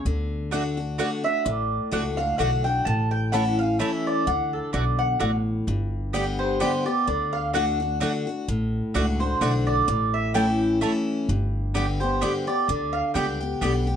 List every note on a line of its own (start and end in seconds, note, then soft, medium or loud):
0.05 0.99 D2 loud
0.05 0.51 D3 medium
0.51 0.77 D3 medium
0.51 0.62 A3 medium
0.51 0.77 A3 medium
0.51 0.78 D4 loud
0.51 0.62 F#4 medium
0.51 0.76 F#4 medium
0.51 0.62 D5 medium
0.51 0.62 F#5 medium
0.77 0.99 D4 soft
0.77 0.98 F#4 medium
0.98 1.24 D3 medium
0.98 1.09 A3 medium
0.98 1.24 A3 medium
0.98 1.24 D4 medium
0.98 1.09 F#4 medium
0.98 1.22 F#4 medium
0.98 1.09 D5 medium
0.98 1.24 F#5 medium
0.98 1.09 F#5 loud
1.24 1.46 D4 soft
1.24 1.45 F#4 medium
1.24 1.45 E5 medium
1.45 1.77 A1 medium
1.45 2.35 A2 loud
1.45 1.89 D5 medium
1.91 2.32 C#2 medium
1.91 2.17 D3 medium
1.91 2.02 A3 medium
1.91 2.17 A3 medium
1.91 2.17 D4 medium
1.91 2.03 F#4 medium
1.91 2.17 F#4 medium
1.91 2.03 D5 medium
1.91 2.03 F#5 medium
2.17 2.40 D4 soft
2.17 2.39 F#4 medium
2.17 2.38 F5 medium
2.38 2.79 B1 medium
2.38 2.64 D3 medium
2.38 2.49 A3 medium
2.38 2.64 A3 medium
2.38 2.65 D4 medium
2.38 2.49 F#4 medium
2.38 2.63 F#4 medium
2.38 2.50 D5 medium
2.38 2.64 F#5 medium
2.38 2.50 F#5 medium
2.64 2.86 D4 soft
2.64 2.85 F#4 medium
2.64 2.85 G5 medium
2.85 3.80 A1 loud
2.85 3.76 A2 loud
2.85 3.11 A5 loud
3.11 3.32 G5 medium
3.32 3.58 E3 loud
3.32 3.43 A3 medium
3.32 3.58 A3 medium
3.32 3.58 C#4 loud
3.32 3.43 E4 medium
3.32 3.58 E4 loud
3.32 3.43 C#5 medium
3.32 3.57 F#5 medium
3.32 3.43 A5 medium
3.59 3.80 C#4 medium
3.59 3.79 E4 medium
3.59 3.79 F5 loud
3.79 4.25 E3 medium
3.79 3.89 A3 medium
3.79 4.25 A3 medium
3.79 4.25 C#4 loud
3.79 3.90 E4 medium
3.79 4.25 E4 medium
3.79 3.90 C#5 loud
3.79 4.05 E5 medium
3.79 3.90 A5 medium
4.07 4.27 D5 medium
4.27 4.58 D2 loud
4.27 5.16 D3 medium
4.27 4.52 F#5 medium
4.53 4.73 A4 medium
4.73 5.14 B1 medium
4.73 5.18 B2 medium
4.73 4.83 A3 medium
4.73 4.83 F#4 medium
4.73 4.98 D5 medium
4.73 4.84 D5 medium
4.73 4.84 F#5 medium
4.99 5.19 F#5 medium
5.20 5.60 A1 medium
5.20 5.65 A2 medium
5.20 5.30 A3 medium
5.20 5.30 F#4 medium
5.20 5.30 D5 medium
5.20 5.36 F#5 medium
5.20 5.30 F#5 medium
5.67 6.61 G1 medium
5.67 6.57 G2 medium
6.13 6.59 D3 medium
6.13 6.59 G3 medium
6.13 6.24 B3 medium
6.13 6.59 B3 loud
6.13 6.24 G4 medium
6.13 6.60 G4 loud
6.13 6.24 D5 medium
6.13 6.24 G5 medium
6.39 6.83 C5 medium
6.60 6.85 D3 medium
6.60 6.86 G3 medium
6.60 6.70 B3 medium
6.60 6.86 B3 loud
6.60 6.71 G4 medium
6.60 6.85 G4 loud
6.60 6.71 D5 medium
6.60 6.71 G5 loud
6.86 7.08 B3 soft
6.86 7.07 G4 medium
6.86 7.07 D5 medium
7.07 8.01 D2 medium
7.07 7.53 D3 loud
7.07 7.33 D5 medium
7.33 7.53 F5 medium
7.53 7.79 D3 medium
7.53 7.64 A3 medium
7.53 7.79 A3 loud
7.53 7.80 D4 medium
7.53 7.64 F#4 medium
7.53 7.79 F#4 loud
7.53 7.64 D5 medium
7.53 7.98 F#5 medium
7.53 7.65 F#5 medium
7.80 8.02 D4 soft
7.80 8.00 F#4 medium
8.00 8.26 D3 loud
8.00 8.11 A3 medium
8.00 8.26 A3 medium
8.00 8.26 D4 medium
8.00 8.11 F#4 medium
8.00 8.26 F#4 medium
8.00 8.11 D5 medium
8.00 8.11 F#5 medium
8.27 8.48 D4 soft
8.27 8.47 F#4 medium
8.48 8.79 A1 medium
8.48 9.38 A2 loud
8.94 9.35 C#2 medium
8.94 9.19 D3 medium
8.94 9.05 A3 medium
8.94 9.20 A3 loud
8.94 9.20 D4 medium
8.94 9.05 F#4 medium
8.94 9.19 F#4 medium
8.94 9.05 D5 medium
8.94 9.05 F#5 medium
9.20 9.41 D4 soft
9.20 9.41 F#4 medium
9.20 9.64 C5 medium
9.41 9.81 B1 medium
9.41 9.86 D3 medium
9.41 9.51 A3 medium
9.41 9.86 A3 medium
9.41 9.87 D4 medium
9.41 9.51 F#4 medium
9.41 9.87 F#4 loud
9.41 9.52 D5 medium
9.41 9.52 F#5 medium
9.67 9.87 D5 loud
9.88 10.82 A1 medium
9.88 10.77 A2 loud
9.88 10.13 D5 medium
10.14 10.34 E5 medium
10.34 10.80 E3 medium
10.34 10.45 A3 medium
10.34 10.80 A3 loud
10.34 10.80 C#4 medium
10.34 10.45 E4 medium
10.34 10.81 E4 loud
10.34 10.45 C#5 medium
10.34 10.79 G5 loud
10.34 10.45 A5 medium
10.81 11.26 E3 medium
10.81 10.91 A3 medium
10.81 11.27 A3 medium
10.81 11.27 C#4 loud
10.81 10.92 E4 medium
10.81 11.27 E4 loud
10.81 10.92 C#5 medium
10.81 10.92 A5 medium
11.29 12.22 G1 medium
11.29 12.18 G2 medium
11.74 12.00 D3 medium
11.74 12.00 G3 medium
11.74 11.85 B3 medium
11.74 12.01 B3 loud
11.74 11.85 G4 medium
11.74 11.99 G4 medium
11.74 11.85 D5 medium
11.74 11.85 G5 loud
12.00 12.22 B3 soft
12.00 12.21 G4 medium
12.00 12.44 C5 medium
12.21 12.46 D3 medium
12.21 12.47 G3 loud
12.21 12.32 B3 medium
12.21 12.47 B3 medium
12.21 12.32 G4 medium
12.21 12.46 G4 loud
12.21 12.32 D5 medium
12.21 12.32 G5 medium
12.47 12.69 B3 soft
12.47 12.68 G4 medium
12.47 12.67 D5 medium
12.68 13.00 D2 medium
12.68 13.14 D3 loud
12.68 12.93 D5 medium
12.93 13.14 F5 medium
13.14 13.55 C#2 medium
13.14 13.40 D3 medium
13.14 13.40 G3 medium
13.14 13.25 B3 medium
13.14 13.40 B3 loud
13.14 13.25 G4 medium
13.14 13.39 G4 medium
13.14 13.26 D5 loud
13.14 13.58 G5 medium
13.14 13.26 G5 loud
13.40 13.62 B3 soft
13.40 13.61 G4 medium
13.61 13.96 B1 medium
13.61 13.87 D3 medium
13.61 13.87 G3 medium
13.61 13.72 B3 medium
13.61 13.87 B3 medium
13.61 13.72 G4 medium
13.61 13.86 G4 medium
13.61 13.72 D5 medium
13.61 13.72 G5 loud
13.87 13.96 B3 soft
13.87 13.96 G4 medium